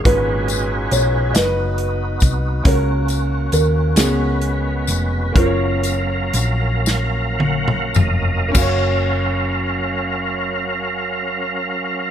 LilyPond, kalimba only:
\new Staff \with { instrumentName = "Kalimba" } { \time 6/8 \key fis \major \tempo 4. = 42 << { b'4 cis''8 dis''4 r8 | cis''4 ais'8 gis'4. | ais'2~ ais'8 r8 | fis'2. | } \\ { <dis' fis'>4. <fis' b'>4. | <fis' ais'>4. b4. | <cis' eis'>2~ <cis' eis'>8 r8 | r2. | } >> }